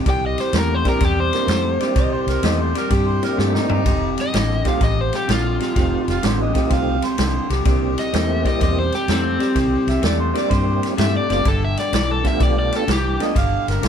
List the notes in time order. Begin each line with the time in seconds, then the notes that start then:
0.06 C2 C3 G3 G5, kick, snare, ride
0.26 D#5
0.38 C5, snare, ride
0.53 E2 C3 A3, snare, ride
0.58 A#4
0.75 C5
0.84 C3 G3 A#3 C4 D4 E4 G4, kick, snare, ride
0.89 A#4
1.00 E2 C3 G3, kick, snare, ride
1.05 G4
1.20 C5
1.33 A#3 C4 D4 E4 A#4, snare, ride
1.47 F2 C3 A3, snare, ride
1.80 C3 G3 A#3 C4 D4 E4 G4, snare, ride
1.96 C2 C3 G3 D#5, kick, snare, ride
2.13 C5
2.27 C2 A#4, snare, ride
2.43 E2 C3 A3 D#5, snare, ride
2.61 C5
2.74 C3 G3 A#4, snare, ride
2.89 G2 C3 G3 G4, kick, snare, ride
3.08 C5
3.22 A#3 C4 D4 E4 G4 A#4, snare, ride
3.37 G2 C3 A3 G4, snare
3.55 D#4, snare
3.69 G2 C3 G3 D#4, floor tom
3.85 F1 F2 C3, kick, snare, ride
4.18 D#5, snare, ride
4.33 A1 F2 D3, snare, ride
4.64 F2 C3 A3 C4 D#4 F4 G4, kick, snare, ride
4.69 F5
4.80 A1 F2 C3 D#5, kick, snare, ride
5.01 C5
5.13 G4, snare, ride
5.27 A#1 F2 D3, snare, ride
5.31 F4
5.59 F2 C3, snare, ride
5.74 F1 F2 C3 A3 C4 D#4 F4 G4, kick, snare, ride
6.08 F1 F4, snare, ride
6.22 A1 F2 D3 G#3 B3 D4 E4 F#4 C5, snare, ride
6.42 D#5
6.53 F2 C3 A3 C4 D#4 F4 G4, kick, snare, ride
6.69 C2 F2 C3 F5, kick, snare, ride
7.02 C5, snare, ride
7.18 C2 F2 D3, snare, ride
7.50 C2 F2 C3, snare, ride
7.65 C2 C3 G3 A#3 C4 D4 E4 G4, kick, snare, ride
7.98 D#5, snare, ride
8.13 E2 C3 A3 A#3 C4 E4 G4, snare, ride
8.45 C3 G3 D#5, kick, snare, ride
8.60 E2 C3 G3 D#5, kick, snare, ride
8.79 C5
8.92 G4, snare, ride
9.08 F2 C3 A3 C4, snare, ride
9.39 C3 G3, snare, ride
9.54 C2 C3 G3, kick, snare, ride
9.87 C2 E5, snare, ride
10.02 E2 C3 A3 D5, snare, ride
10.20 C5
10.33 C3 G3 A#3 C4 D4 E4 G4 D5, snare, ride
10.50 G2 C3 G3 C5, kick, snare, ride
10.83 snare, ride
10.97 G2 C3 A3 E5, snare, ride
11.17 D5
11.29 F#1 C3 G3 A3 B3 D4 F4 G4, snare, ride
11.33 D5
11.45 G1 G2 D3 A4, kick, snare, ride
11.64 E5
11.77 D5, snare, ride
11.93 B1 G2 E3 D5, snare, ride
12.11 A4
12.24 G2 D3 A3 B3 D4 F4 G4 E5, kick, snare, ride
12.39 B1 G2 D3 D5, kick, snare, ride
12.59 D5
12.72 A4, snare, ride
12.87 C2 G2 E3, snare, ride
12.92 G4
13.18 G2 D3 A3 B3 D4 F4 A4 D#5, snare, ride
13.34 G1 G2 D3, kick, snare, ride
13.38 F5
13.68 G1 A#4, snare, ride
13.82 B1 G2 E3, snare, ride